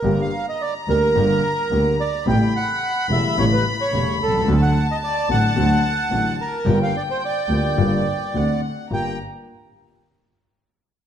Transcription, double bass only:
0.03 G1
0.88 D2
1.15 G1
1.71 D2
2.26 A1
3.09 E1
3.37 A1
3.92 E1
4.20 C2
4.47 D2
5.29 A1
5.56 D2
6.10 A1
6.66 G1
7.49 D2
7.77 G1
8.34 D2
8.91 G1

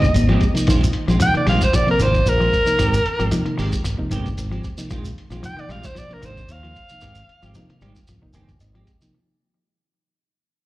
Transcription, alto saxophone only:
Already playing: D#5
1.22 G5
1.37 D5
1.49 F5
1.63 C5
1.76 D5
1.91 A#4
2.02 C5
2.29 A#4
5.45 G5
5.60 D5
5.71 F5
5.85 C5
5.98 D5
6.13 A#4
6.25 C5
6.52 F5

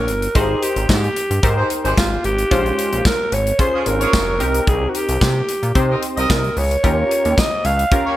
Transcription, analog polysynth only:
0.35 D#4 G4 A#4 C5
1.43 D#4 G4 A#4 C5
2.51 G#3 C#4 F4 C5
3.59 C#4 F4 G#4 C5
4.40 C4 D#4 G4 A#4
5.75 C4 D#4 G4 C5
6.83 C#4 F4 G4 A#4
7.92 C#4 F4 G4 A#4

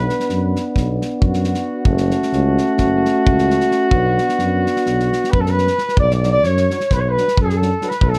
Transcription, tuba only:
0.30 F#2
0.76 B1
1.23 F#2
1.87 F#1
2.33 C#2
2.80 F#1
3.28 C#2
3.92 B1
4.39 F#2
4.87 B1
5.34 F#2
5.98 B1
6.45 F#2
6.91 B1
7.38 F#2
8.02 B1

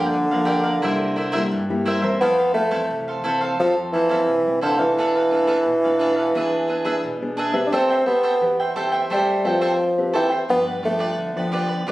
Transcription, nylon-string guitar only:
Already playing: G2 F3 A#3 D4
0.13 D3
0.32 F3 A#3 D4
0.83 C3 G3 A#3 E4
1.34 G3 A#3 E4
1.52 G2
1.70 G3 A#3 E4
2.02 E3 A3 C4
2.21 F2
2.71 E3 A3 C4
2.90 C3
3.24 E3 A3 C4
3.59 F2 A3 C4
4.10 E3 A3 C4
4.28 C3
4.46 E3 A3 C4
4.79 A3 D4
4.97 B2
5.31 A3 D4
5.66 B2
5.85 A3 D4
6.34 E3 B3 D4 G#4
6.84 B3 D4 G#4
7.04 B2
7.22 B3 D4 G#4
7.53 C4 G4 B4
7.72 A3
8.06 C4 G4 B4
8.41 E3 C4 G4 B4
8.75 C4 G4 B4
9.10 A3
9.44 C4 G4 B4
9.98 C4 G4 B4
10.49 G2 F3 B3 D4
10.83 F3 B3 D4
11.18 D3
11.36 F3 B3 D4
11.87 G2 F3 B3 D4

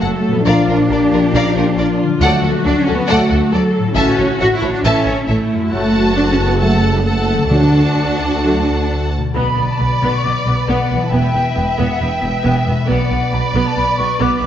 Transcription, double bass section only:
0.02 F#1
0.46 A#1
0.68 A#1
0.89 A#1
1.12 A#1
1.34 A#1
1.56 A#1
1.77 A#1
2.20 D2
2.43 D2
2.65 D2
2.88 D2
3.10 D2
3.31 D2
3.53 D2
3.97 A1
4.18 A1
4.41 A1
4.62 A1
4.84 A1
5.07 A1
5.28 A1
5.72 F#1
7.52 D2
9.36 B1
9.58 B1
9.80 B1
10.02 B1
10.25 B1
10.46 B1
10.69 B1
10.91 B1
11.13 E1
11.35 E1
11.57 E1
11.79 E1
12.01 E1
12.23 E1
12.46 E1
12.67 E1
12.89 B1
13.11 B1
13.33 B1
13.54 B1
13.76 B1
13.98 B1
14.20 B1
14.42 B1

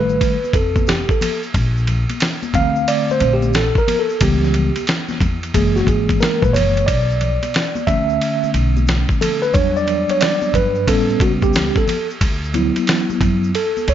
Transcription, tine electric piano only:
Already playing: D#3 G3 A3
0.00 B4
0.55 A4
0.88 G4
1.11 A4
2.54 D3 A3 C4 F5
2.88 D5
3.11 C5
3.33 G4
3.55 A4
3.78 A#4
3.99 A4
4.21 E3 G3 B3 G4
5.54 E3 G#3 A#3 G#4
5.76 F#4
5.88 G#4
6.21 A#4
6.42 B4
6.53 C#5
6.86 D5
7.87 D3 A3 C#4 E5
9.21 A4
9.42 B4
9.53 F#3 G3 D4 C#5
9.77 D5
10.11 C#5
10.21 D5
10.55 B4
10.88 G3 B3 C#4 A4
11.22 F#4
11.43 G4
11.78 A4
12.54 F#3 B3 E4
13.55 A4
13.89 C#5

